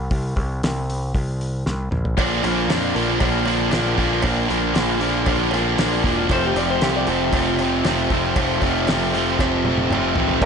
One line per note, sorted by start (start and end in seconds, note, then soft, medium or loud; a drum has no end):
0.11 0.35 C2 medium
0.11 kick loud
0.11 open hi-hat medium
0.36 0.61 C2 medium
0.36 kick medium
0.36 open hi-hat soft
0.63 1.12 C2 medium
0.63 snare loud
0.63 open hi-hat medium
0.90 open hi-hat soft
1.15 1.63 C2 medium
1.15 kick loud
1.15 open hi-hat medium
1.41 open hi-hat soft
1.66 1.91 C2 medium
1.66 snare medium
1.91 2.16 A#1 medium
1.91 mid tom medium
2.05 floor tom medium
2.17 2.42 A#1 medium
2.17 2.43 A#2 medium
2.17 2.43 D3 medium
2.17 2.43 F3 medium
2.17 2.44 A#3 medium
2.17 2.45 D4 medium
2.17 2.45 F4 medium
2.17 kick loud
2.17 open hi-hat medium
2.17 cowbell medium
2.43 2.67 A#1 medium
2.43 2.68 A#2 medium
2.43 2.68 D3 medium
2.43 2.69 F3 medium
2.43 2.69 A#3 medium
2.43 2.70 D4 medium
2.43 2.70 F4 medium
2.43 open hi-hat medium
2.43 cowbell medium
2.68 2.93 F2 medium
2.68 2.94 A#2 medium
2.68 2.94 D3 medium
2.68 2.95 F3 medium
2.68 2.95 A#3 medium
2.68 2.96 D4 medium
2.68 2.96 F4 medium
2.68 snare loud
2.68 open hi-hat medium
2.68 cowbell medium
2.95 3.19 A#1 medium
2.95 3.18 A#2 medium
2.95 3.19 D3 medium
2.95 3.19 F3 medium
2.95 3.20 A#3 medium
2.95 3.20 D4 medium
2.95 3.21 F4 medium
2.95 open hi-hat soft
3.20 3.70 A#1 loud
3.20 3.44 A#2 medium
3.20 3.45 D3 medium
3.20 3.46 F3 medium
3.20 3.45 A#3 medium
3.20 3.46 D4 medium
3.20 3.47 F4 loud
3.20 kick loud
3.20 open hi-hat medium
3.20 cowbell medium
3.45 3.70 A#2 medium
3.45 3.71 D3 medium
3.45 3.70 F3 medium
3.45 3.72 A#3 medium
3.45 3.72 D4 medium
3.45 3.73 F4 medium
3.45 open hi-hat soft
3.45 cowbell medium
3.71 3.97 A#1 medium
3.71 3.95 A#2 medium
3.71 3.96 D3 medium
3.71 3.96 F3 medium
3.71 3.97 A#3 medium
3.71 3.97 D4 medium
3.71 3.98 F4 medium
3.71 snare loud
3.71 open hi-hat medium
3.71 cowbell medium
3.97 4.23 A#1 medium
3.97 4.22 A#2 medium
3.97 4.22 D3 medium
3.97 4.22 F3 medium
3.97 4.23 A#3 medium
3.97 4.23 D4 medium
3.97 4.25 F4 medium
3.97 kick medium
3.97 open hi-hat soft
4.22 4.49 A#1 medium
4.22 4.48 A#2 medium
4.22 4.48 D3 medium
4.22 4.48 F3 medium
4.22 4.49 A#3 loud
4.22 4.49 D4 loud
4.22 4.51 F4 loud
4.22 kick loud
4.22 open hi-hat medium
4.22 cowbell medium
4.48 4.74 A#1 medium
4.48 4.73 A#2 medium
4.48 4.74 D3 medium
4.48 4.73 F3 medium
4.48 4.75 A#3 medium
4.48 4.75 D4 medium
4.48 4.76 F4 medium
4.48 open hi-hat soft
4.73 5.24 A#1 medium
4.73 4.99 A#2 medium
4.73 5.00 D3 medium
4.73 5.01 F3 medium
4.73 5.00 A#3 medium
4.73 5.01 D4 medium
4.73 5.02 F4 medium
4.73 snare loud
4.73 open hi-hat medium
4.73 cowbell medium
5.00 5.25 A#2 medium
5.00 5.26 D3 medium
5.00 5.27 F3 medium
5.00 5.27 A#3 medium
5.00 5.27 D4 medium
5.00 5.28 F4 medium
5.00 open hi-hat soft
5.26 5.76 A#1 medium
5.26 5.51 A#2 medium
5.26 5.52 D3 medium
5.26 5.53 F3 medium
5.26 5.52 A#3 medium
5.26 5.53 D4 medium
5.26 5.54 F4 medium
5.26 kick loud
5.26 open hi-hat medium
5.26 cowbell medium
5.51 5.76 A#2 medium
5.51 5.77 D3 medium
5.51 5.80 F3 medium
5.51 5.78 A#3 medium
5.51 5.78 D4 medium
5.51 5.79 F4 medium
5.51 open hi-hat soft
5.51 cowbell medium
5.78 6.03 A#1 medium
5.78 6.02 A#2 medium
5.78 6.03 D3 medium
5.78 6.04 F3 medium
5.78 6.04 A#3 medium
5.78 6.04 D4 medium
5.78 6.05 F4 loud
5.78 snare loud
5.78 open hi-hat medium
5.78 cowbell medium
6.03 6.29 E1 medium
6.03 6.28 A#2 medium
6.03 6.28 D3 medium
6.03 6.31 F3 medium
6.03 6.29 A#3 medium
6.03 6.29 D4 medium
6.03 6.31 F4 medium
6.03 kick medium
6.03 open hi-hat soft
6.29 6.54 F1 medium
6.29 6.55 F2 loud
6.29 6.55 C3 medium
6.29 6.56 F3 medium
6.29 6.57 A3 loud
6.29 6.57 C4 medium
6.29 6.58 F4 loud
6.29 6.44 C5 medium
6.29 kick loud
6.29 open hi-hat medium
6.29 cowbell medium
6.46 6.57 G4 medium
6.55 6.80 F1 medium
6.55 6.80 F2 medium
6.55 6.80 C3 medium
6.55 6.81 F3 medium
6.55 6.81 A3 medium
6.55 6.82 C4 medium
6.55 6.83 F4 medium
6.55 6.69 D5 medium
6.55 open hi-hat medium
6.55 cowbell medium
6.70 6.82 C5 medium
6.80 7.06 C2 medium
6.80 7.07 F2 medium
6.80 7.07 C3 medium
6.80 7.08 F3 medium
6.80 7.09 A3 medium
6.80 7.09 C4 medium
6.80 7.09 F4 medium
6.80 6.95 G4 medium
6.80 snare loud
6.80 open hi-hat medium
6.80 cowbell medium
6.96 7.08 D5 medium
7.07 7.31 F1 medium
7.07 7.33 F2 medium
7.07 7.33 C3 medium
7.07 7.34 F3 medium
7.07 7.34 A3 medium
7.07 7.34 C4 medium
7.07 7.35 F4 medium
7.07 7.34 C5 medium
7.07 open hi-hat medium
7.32 7.82 F1 medium
7.32 7.58 F2 medium
7.32 7.58 C3 medium
7.32 7.60 F3 medium
7.32 7.59 A3 medium
7.32 7.60 C4 loud
7.32 7.61 F4 loud
7.32 kick loud
7.32 open hi-hat medium
7.32 cowbell medium
7.59 7.85 F2 medium
7.59 7.86 C3 medium
7.59 7.87 F3 medium
7.59 7.86 A3 medium
7.59 7.87 C4 medium
7.59 7.88 F4 medium
7.59 open hi-hat soft
7.59 cowbell medium
7.85 8.09 F1 medium
7.85 8.10 F2 medium
7.85 8.11 C3 medium
7.85 8.12 F3 medium
7.85 8.12 A3 medium
7.85 8.12 C4 medium
7.85 8.14 F4 medium
7.85 snare loud
7.85 open hi-hat medium
7.85 cowbell medium
8.10 8.35 F1 medium
8.10 8.36 F2 medium
8.10 8.37 C3 medium
8.10 8.37 F3 medium
8.10 8.38 A3 medium
8.10 8.38 C4 medium
8.10 8.39 F4 medium
8.10 kick medium
8.10 open hi-hat soft
8.36 8.61 F1 medium
8.36 8.62 F2 medium
8.36 8.62 C3 medium
8.36 8.63 F3 medium
8.36 8.63 A3 medium
8.36 8.64 C4 medium
8.36 kick loud
8.36 open hi-hat medium
8.36 cowbell medium
8.40 8.64 F4 loud
8.62 8.86 F1 medium
8.62 8.88 F2 medium
8.62 8.89 C3 medium
8.62 8.89 F3 medium
8.62 8.89 A3 medium
8.62 8.90 C4 medium
8.62 8.90 F4 medium
8.62 kick medium
8.62 open hi-hat medium
8.62 cowbell medium
8.87 9.37 F1 medium
8.87 9.14 F2 medium
8.87 9.14 C3 medium
8.87 9.15 F3 medium
8.87 9.15 A3 medium
8.87 9.16 C4 medium
8.87 snare loud
8.87 open hi-hat medium
8.87 cowbell medium
8.91 9.16 F4 medium
9.14 9.38 F2 medium
9.14 9.39 C3 medium
9.14 9.40 F3 medium
9.14 9.40 A3 medium
9.14 9.40 C4 medium
9.14 9.41 F4 medium
9.14 open hi-hat soft
9.39 9.88 F1 medium
9.39 9.65 F2 medium
9.39 9.65 C3 medium
9.39 9.66 F3 medium
9.39 9.66 A3 medium
9.39 9.67 C4 medium
9.39 9.67 F4 medium
9.39 kick loud
9.39 snare medium
9.39 cowbell medium
9.65 9.91 F2 medium
9.65 9.92 C3 medium
9.65 9.92 F3 medium
9.65 9.92 A3 medium
9.65 9.93 C4 medium
9.65 9.93 F4 medium
9.65 high tom medium
9.78 high tom medium
9.90 10.15 F1 medium
9.90 10.15 F2 medium
9.90 10.16 C3 medium
9.90 10.17 F3 medium
9.90 10.17 A3 medium
9.90 10.18 C4 medium
9.90 mid tom medium
9.90 cowbell medium
9.94 10.18 F4 medium
10.16 10.41 A1 medium
10.16 10.41 F2 medium
10.16 10.41 C3 medium
10.16 10.42 F3 medium
10.16 10.42 A3 medium
10.16 10.42 C4 medium
10.16 10.42 F4 medium
10.16 floor tom medium
10.28 floor tom medium
10.41 10.45 A#1 medium
10.41 kick loud
10.41 crash loud